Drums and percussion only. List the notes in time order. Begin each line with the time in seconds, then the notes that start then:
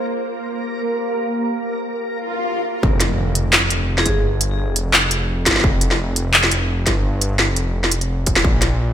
2.83 kick
3.00 snare, closed hi-hat
3.35 closed hi-hat
3.53 clap, snare
3.70 closed hi-hat
3.98 snare
4.06 kick, closed hi-hat
4.41 closed hi-hat
4.76 closed hi-hat
4.94 clap, snare
5.11 closed hi-hat
5.46 kick, snare, closed hi-hat
5.51 snare
5.56 snare
5.60 kick, snare
5.81 closed hi-hat
5.91 snare
6.16 closed hi-hat
6.34 clap
6.44 snare
6.51 closed hi-hat
6.87 kick, snare, closed hi-hat
7.21 closed hi-hat
7.39 snare
7.56 closed hi-hat
7.84 snare
7.91 closed hi-hat
8.01 closed hi-hat
8.26 kick, closed hi-hat
8.36 snare
8.44 kick
8.62 snare, closed hi-hat